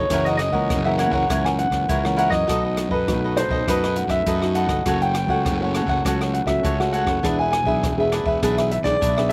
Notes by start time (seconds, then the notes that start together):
Already playing: C#5
0.10 F#1 F#2 E3 A#3 C#4 E4 A#4 C#5 F#5, kick, cross-stick, closed hi-hat
0.25 A#4 C#5 D#5 F#5, closed hi-hat
0.37 D#5, muted cavaquinho stroke, cross-stick, closed hi-hat
0.51 C#2 E3 A#3 C#4 A#4 C#5 F#5, kick
0.69 F#1 C#3, kick, cross-stick, closed hi-hat
0.84 E3 A#3 C#4 A#4 C#5 E5 F#5
0.98 E4 A#4 C#5 F#5, cross-stick, closed hi-hat
1.10 F#1 C#5 F#5, kick
1.14 A#4
1.29 C#2 F#2 E3 A#3 C#4 E4 A#4 C#5 F#5, kick, cross-stick, closed hi-hat
1.45 A#4 C#5 F#5 G#5, cross-stick, closed hi-hat
1.59 F#5, muted cavaquinho stroke, closed hi-hat
1.70 C#2 E3 A#3 C#4, kick, cross-stick, closed hi-hat
1.88 C#2 C#3 E4 A#4 C#5 F#5, kick, closed hi-hat
2.04 E3 A#3 C#4 A#4 C#5 F#5, cross-stick
2.16 E4 A#4 C#5 F#5, closed hi-hat
2.30 F#2 C#5 D#5 F#5, kick, cross-stick
2.47 B1 B2 A3 D#4 F#4 A4 B4 D#5, kick, cross-stick, closed hi-hat
2.64 A4 B4 D#5
2.77 muted cavaquinho stroke, cross-stick, closed hi-hat
2.89 F#2 A4 B4 D#5, kick
3.07 B1 F#2 A3 D#4 F#4, kick, cross-stick, closed hi-hat
3.24 A4 B4 D#5
3.37 D#4 A4 B4 C5 D#5, cross-stick, closed hi-hat
3.48 B1 B4 D#5, kick
3.53 A4
3.67 F#2 B2 A3 D#4 F#4 A4 B4 D#5, kick, cross-stick, closed hi-hat
3.84 A4 B4 D#5, cross-stick, closed hi-hat
3.96 A3 D#4 F#4 F#5, muted cavaquinho stroke, closed hi-hat
4.07 F#2 E5, kick, cross-stick, closed hi-hat
4.26 F#2 D#4 A4 B4 D#5, kick, closed hi-hat
4.42 A3 D#4 F#4 A4 B4 D#5, cross-stick
4.55 D#4 A4 B4 D#5 F#5, closed hi-hat
4.67 G1 B4 D#5, kick, cross-stick, closed hi-hat
4.71 A4
4.86 F#1 F#3 A3 C#4 F#4 A4 C#5 F#5, kick, cross-stick, closed hi-hat
5.02 A4 C#5 F#5 G5, closed hi-hat
5.15 G5, muted cavaquinho stroke, cross-stick, closed hi-hat
5.26 C#2 A3 C#4 F#4 F#5, kick
5.30 A4 C#5
5.45 F#1 C#3, kick, cross-stick, closed hi-hat
5.60 A3 C#4 F#4 C#5 F#5
5.65 A4
5.74 F#4 A4 C#5 F#5, cross-stick, closed hi-hat
5.86 F#1 F#5, kick
5.90 A4 C#5
6.04 C#2 F#3 A3 C#4 F#4 A4 C#5 F#5, kick, cross-stick, closed hi-hat
6.21 A4 C#5 F#5, cross-stick, closed hi-hat
6.34 F#5, muted cavaquinho stroke, closed hi-hat
6.45 C#2 A3 C#4 F#4 E5, kick, cross-stick, closed hi-hat
6.63 C#2 C#3 F#4 A4 C#5 F#5, kick, closed hi-hat
6.79 A3 C#4 F#4 A4 C#5 F#5, cross-stick
6.92 F#4 A4 C#5 F#5, closed hi-hat
7.05 F#1 C#5 F#5, kick, cross-stick
7.09 A4
7.23 E1 E3 B3 D4 G#4 B4 E5, kick, cross-stick, closed hi-hat
7.39 G#4 B4 E5 G#5
7.52 G#5, muted cavaquinho stroke, cross-stick, closed hi-hat
7.64 B1 B3 D4 G#4 B4 E5, kick
7.69 G#4
7.83 E1 B2, kick, cross-stick, closed hi-hat
7.98 B3 D4 G#4 B4 E5
8.12 D4 G#4 B4 E5, cross-stick, closed hi-hat
8.23 E1 E5, kick
8.27 G#4 B4
8.42 B1 E3 B3 D4 G#4 B4 E5, kick, cross-stick, closed hi-hat
8.57 G#4 B4 E5, cross-stick, closed hi-hat
8.71 E5, muted cavaquinho stroke, closed hi-hat
8.82 B1 B3 D4 G#4 D5, kick, cross-stick, closed hi-hat
9.01 B1 B2 D4 G#4 B4 E5, kick, closed hi-hat
9.17 B3 D4 G#4 B4 E5, cross-stick
9.29 D4 E5